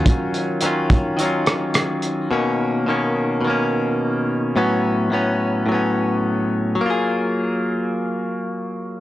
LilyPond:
<<
  \new Staff \with { instrumentName = "Clean electric guitar" } { \time 4/4 \key fis \major \tempo 4 = 107 <dis fis cis' eis'>4 <dis fis cis' eis'>4 <dis fis cis' eis'>2 | <b, dis ais cis'>4 <b, dis ais cis'>4 <b, dis ais cis'>2 | <a, fis b cis'>4 <a, fis b cis'>4 <a, fis b cis'>2 | <fis ais eis' gis'>1 | }
  \new DrumStaff \with { instrumentName = "Drums" } \drummode { \time 4/4 <hh bd>8 hh8 hh8 <hh bd>8 hh8 <hh ss>8 <hh ss>8 hh8 | r4 r4 r4 r4 | r4 r4 r4 r4 | r4 r4 r4 r4 | }
>>